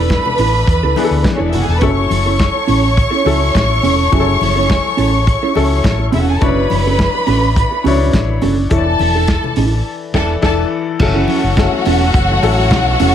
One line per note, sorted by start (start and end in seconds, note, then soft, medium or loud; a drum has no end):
0.00 0.17 E1 loud
0.00 0.42 E3 medium
0.00 0.42 B3 medium
0.00 0.42 D4 medium
0.00 0.42 A4 medium
0.00 1.23 B4 loud
0.00 1.23 B5 loud
0.10 muted clean electric guitar stroke soft
0.10 kick medium
0.10 snare medium
0.10 closed hi-hat medium
0.10 muted conga soft
0.10 high conga medium
0.26 muted clean electric guitar stroke soft
0.26 low conga medium
0.38 0.62 A1 medium
0.38 0.59 D4 medium
0.38 0.54 E4 medium
0.38 0.53 A4 medium
0.38 open hi-hat medium
0.54 muted clean electric guitar stroke soft
0.67 0.80 E2 medium
0.67 muted clean electric guitar stroke soft
0.67 kick loud
0.67 closed hi-hat medium
0.67 muted conga soft
0.83 0.94 C#2 medium
0.83 0.95 D4 medium
0.83 0.95 E4 medium
0.83 0.96 A4 medium
0.96 1.63 E3 medium
0.96 1.64 B3 medium
0.96 1.12 D4 medium
0.96 1.64 D4 medium
0.96 1.11 E4 medium
0.96 1.04 G#4 medium
0.96 1.11 A4 medium
0.96 open hi-hat medium
0.96 muted conga soft
0.96 high conga medium
1.05 1.68 A4 medium
1.11 1.22 D2 medium
1.11 muted clean electric guitar stroke soft
1.24 muted clean electric guitar stroke soft
1.24 kick loud
1.24 snare loud
1.24 closed hi-hat soft
1.24 muted conga soft
1.24 high conga medium
1.34 1.41 C#4 medium
1.34 1.52 E4 medium
1.34 1.53 A4 medium
1.34 1.41 C#5 medium
1.39 1.53 E1 medium
1.39 1.51 D4 medium
1.39 1.47 D4 medium
1.39 1.47 D5 medium
1.48 1.54 E4 medium
1.48 1.54 E5 medium
1.52 1.66 F#1 medium
1.52 1.68 D4 medium
1.52 1.67 E4 medium
1.52 1.62 F#4 medium
1.52 1.66 A4 medium
1.52 1.61 F#5 medium
1.52 open hi-hat medium
1.52 muted conga soft
1.52 low conga medium
1.62 1.69 G#4 medium
1.62 1.69 G#5 medium
1.67 1.82 E1 medium
1.67 1.76 A4 medium
1.67 1.76 A5 medium
1.67 muted clean electric guitar stroke soft
1.76 1.83 B4 medium
1.76 1.83 B5 medium
1.81 2.05 F#1 loud
1.81 2.71 F#3 medium
1.81 2.01 C#4 medium
1.81 2.71 C#4 medium
1.81 1.97 E4 medium
1.81 2.71 E4 medium
1.81 1.96 A4 medium
1.81 2.72 A4 loud
1.81 6.03 C#5 medium
1.81 6.03 C#6 loud
1.81 kick loud
1.81 closed hi-hat medium
1.81 muted conga soft
1.81 low conga medium
1.97 muted clean electric guitar stroke soft
2.09 2.46 F#1 medium
2.09 muted clean electric guitar stroke soft
2.09 open hi-hat medium
2.09 muted conga soft
2.09 high conga medium
2.26 2.38 C#4 soft
2.26 2.39 E4 medium
2.26 2.39 A4 medium
2.39 kick loud
2.39 snare medium
2.39 closed hi-hat medium
2.39 muted conga soft
2.39 high conga medium
2.55 muted clean electric guitar stroke soft
2.67 3.04 A1 medium
2.67 2.87 C#4 medium
2.67 2.83 E4 medium
2.67 2.82 A4 medium
2.67 open hi-hat medium
2.67 muted conga soft
2.83 muted clean electric guitar stroke soft
2.96 muted clean electric guitar stroke soft
2.96 kick loud
2.96 closed hi-hat medium
3.10 3.23 C#4 medium
3.10 3.24 E4 medium
3.10 3.24 A4 medium
3.25 3.49 C#2 medium
3.25 3.92 F#3 medium
3.25 3.41 C#4 medium
3.25 3.93 C#4 medium
3.25 3.40 E4 medium
3.25 3.93 E4 medium
3.25 3.39 A4 medium
3.25 3.93 A4 medium
3.25 open hi-hat medium
3.25 muted conga soft
3.25 high conga medium
3.40 muted clean electric guitar stroke soft
3.55 3.78 A1 medium
3.55 kick loud
3.55 snare loud
3.55 closed hi-hat medium
3.55 high conga medium
3.70 muted clean electric guitar stroke soft
3.83 4.07 E1 medium
3.83 4.03 C#4 medium
3.83 3.97 E4 medium
3.83 3.97 A4 medium
3.83 open hi-hat medium
3.83 muted conga soft
3.83 low conga medium
3.98 muted clean electric guitar stroke soft
4.12 4.36 F#1 loud
4.12 5.01 F#3 medium
4.12 4.31 C#4 medium
4.12 5.01 C#4 medium
4.12 4.28 E4 medium
4.12 5.01 E4 medium
4.12 4.19 G#4 medium
4.12 4.27 A4 medium
4.12 kick loud
4.12 closed hi-hat medium
4.12 low conga medium
4.20 5.05 A4 medium
4.28 muted clean electric guitar stroke soft
4.41 4.76 F#1 medium
4.41 muted clean electric guitar stroke soft
4.41 open hi-hat medium
4.41 muted conga soft
4.41 high conga medium
4.56 4.68 C#4 medium
4.56 4.69 E4 medium
4.56 4.69 A4 medium
4.69 kick loud
4.69 snare loud
4.69 closed hi-hat medium
4.69 muted conga soft
4.69 high conga medium
4.84 muted clean electric guitar stroke soft
4.97 5.34 A1 medium
4.97 5.17 C#4 medium
4.97 5.12 E4 medium
4.97 5.11 A4 loud
4.97 open hi-hat medium
5.13 muted clean electric guitar stroke soft
5.27 muted clean electric guitar stroke soft
5.27 kick loud
5.27 closed hi-hat medium
5.27 muted conga soft
5.43 5.54 C#4 medium
5.43 5.54 E4 medium
5.43 5.55 A4 medium
5.55 5.79 C#2 medium
5.55 6.22 F#3 medium
5.55 5.71 C#4 medium
5.55 6.22 C#4 medium
5.55 5.71 E4 medium
5.55 6.23 E4 medium
5.55 5.70 A4 medium
5.55 6.23 A4 loud
5.55 open hi-hat medium
5.55 muted conga soft
5.55 high conga medium
5.71 muted clean electric guitar stroke soft
5.84 6.08 A1 loud
5.84 kick loud
5.84 snare loud
5.84 closed hi-hat medium
5.84 muted conga soft
5.84 high conga medium
5.98 muted clean electric guitar stroke soft
6.12 6.36 E1 medium
6.12 6.33 C#4 medium
6.12 6.20 E4 medium
6.12 6.27 E4 medium
6.12 6.26 A4 loud
6.12 6.20 E5 medium
6.12 open hi-hat medium
6.12 muted conga soft
6.12 low conga medium
6.19 6.27 F#4 medium
6.19 6.27 F#5 medium
6.27 6.34 G#4 medium
6.27 6.34 G#5 medium
6.27 muted clean electric guitar stroke soft
6.34 6.41 A4 medium
6.34 6.41 A5 medium
6.41 6.65 F#1 medium
6.41 7.30 F#3 medium
6.41 6.61 C#4 medium
6.41 7.31 D4 medium
6.41 7.31 E4 medium
6.41 6.56 F#4 medium
6.41 6.56 A4 medium
6.41 8.38 B4 medium
6.41 7.31 C#5 medium
6.41 8.38 B5 loud
6.41 kick loud
6.41 closed hi-hat medium
6.41 low conga medium
6.57 muted clean electric guitar stroke soft
6.70 7.06 F#1 medium
6.70 muted clean electric guitar stroke soft
6.70 open hi-hat medium
6.70 muted conga soft
6.70 high conga medium
6.86 6.98 C#4 soft
6.86 6.99 F#4 medium
6.86 6.98 A4 medium
6.99 muted clean electric guitar stroke soft
6.99 kick loud
6.99 snare loud
6.99 closed hi-hat medium
6.99 muted conga soft
6.99 high conga medium
7.14 muted clean electric guitar stroke soft
7.27 7.63 A1 medium
7.27 7.46 C#4 medium
7.27 7.42 F#4 medium
7.27 7.41 A4 medium
7.27 open hi-hat medium
7.27 muted conga soft
7.42 muted clean electric guitar stroke soft
7.56 muted clean electric guitar stroke soft
7.56 kick loud
7.56 closed hi-hat medium
7.56 muted conga soft
7.71 muted clean electric guitar stroke medium
7.84 8.08 C#2 medium
7.84 8.52 F#3 medium
7.84 8.00 C#4 medium
7.84 8.53 D4 medium
7.84 8.53 E4 medium
7.84 8.00 F#4 medium
7.84 7.99 A4 medium
7.84 8.53 C#5 loud
7.84 open hi-hat medium
7.84 muted conga soft
7.84 high conga medium
8.01 8.14 C#4 soft
8.01 8.15 F#4 soft
8.01 8.14 A4 soft
8.13 8.37 A1 medium
8.13 kick loud
8.13 snare loud
8.13 closed hi-hat medium
8.13 muted conga soft
8.13 high conga medium
8.29 muted clean electric guitar stroke soft
8.42 8.66 F#1 medium
8.42 8.61 C#4 medium
8.42 8.56 F#4 medium
8.42 8.55 A4 loud
8.42 open hi-hat medium
8.42 low conga medium
8.56 muted clean electric guitar stroke soft
8.70 8.94 E1 loud
8.70 9.59 E3 medium
8.70 8.90 D4 medium
8.70 9.60 E4 medium
8.70 8.87 E4 medium
8.70 9.60 A4 medium
8.70 9.83 A4 medium
8.70 8.86 A4 medium
8.70 8.78 C#5 medium
8.70 9.83 A5 medium
8.70 kick loud
8.70 closed hi-hat medium
8.70 low conga medium
8.78 9.63 D5 medium
8.87 muted clean electric guitar stroke soft
8.99 9.35 E1 loud
8.99 muted clean electric guitar stroke soft
8.99 open hi-hat medium
8.99 muted conga soft
8.99 high conga medium
9.15 9.29 D4 soft
9.15 9.29 E4 medium
9.15 9.29 A4 medium
9.28 muted clean electric guitar stroke soft
9.28 kick loud
9.28 snare loud
9.28 closed hi-hat medium
9.28 muted conga soft
9.28 high conga medium
9.44 muted clean electric guitar stroke soft
9.44 low conga medium
9.56 9.80 A1 medium
9.56 9.77 D4 medium
9.56 9.73 E4 medium
9.56 9.72 A4 medium
9.56 open hi-hat medium
9.73 muted clean electric guitar stroke soft
10.14 10.34 E1 loud
10.14 10.33 E3 loud
10.14 10.34 D4 loud
10.14 10.34 E4 loud
10.14 10.35 E4 loud
10.14 10.34 A4 loud
10.14 10.35 A4 loud
10.14 10.34 D5 medium
10.14 10.34 A5 medium
10.14 kick medium
10.14 snare loud
10.14 crash medium
10.42 10.62 E1 medium
10.42 10.62 E3 loud
10.42 10.63 D4 loud
10.42 10.62 E4 loud
10.42 10.63 E4 loud
10.42 10.62 A4 loud
10.42 10.63 A4 medium
10.42 10.63 D5 loud
10.42 10.63 A5 medium
10.42 kick loud
10.42 snare loud
10.42 crash medium
10.99 11.23 F#1 loud
10.99 13.15 E3 medium
10.99 11.45 F#3 medium
10.99 13.15 F#3 medium
10.99 13.15 A3 medium
10.99 11.45 C#4 medium
10.99 11.45 E4 medium
10.99 13.15 F#4 loud
10.99 13.15 F#4 medium
10.99 11.46 A4 loud
10.99 13.15 C#5 medium
10.99 13.15 F#5 loud
10.99 muted clean electric guitar stroke soft
10.99 kick loud
10.99 crash loud
10.99 muted conga soft
10.99 low conga medium
11.15 11.25 C#4 medium
11.15 11.27 E4 medium
11.15 11.27 A4 medium
11.27 11.43 C#4 medium
11.27 11.41 E4 medium
11.27 11.41 A4 medium
11.27 open hi-hat medium
11.27 high conga medium
11.42 11.67 F#1 loud
11.42 muted clean electric guitar stroke soft
11.57 12.24 F#3 medium
11.57 12.24 C#4 medium
11.57 12.24 E4 medium
11.57 12.25 A4 medium
11.57 muted clean electric guitar stroke soft
11.57 kick loud
11.57 snare loud
11.57 closed hi-hat medium
11.57 high conga medium
11.72 muted clean electric guitar stroke soft
11.85 12.09 E1 medium
11.85 12.05 C#4 loud
11.85 12.01 E4 loud
11.85 12.00 A4 loud
11.85 open hi-hat medium
11.85 muted conga soft
12.01 muted clean electric guitar stroke soft
12.14 12.37 F#1 medium
12.14 muted clean electric guitar stroke soft
12.14 kick loud
12.14 closed hi-hat medium
12.14 muted conga soft
12.31 muted clean electric guitar stroke medium
12.43 12.71 A1 loud
12.43 13.09 F#3 medium
12.43 13.09 C#4 medium
12.43 13.09 E4 medium
12.43 13.10 A4 loud
12.43 open hi-hat medium
12.43 muted conga soft
12.59 muted clean electric guitar stroke soft
12.71 12.94 B1 loud
12.71 muted clean electric guitar stroke soft
12.71 kick loud
12.71 snare loud
12.71 closed hi-hat medium
12.71 muted conga soft
12.71 high conga medium
12.87 muted clean electric guitar stroke soft
12.99 13.15 E1 medium
12.99 13.15 C#4 loud
12.99 13.15 E4 medium
12.99 13.15 A4 loud
12.99 open hi-hat medium
12.99 muted conga soft
12.99 low conga medium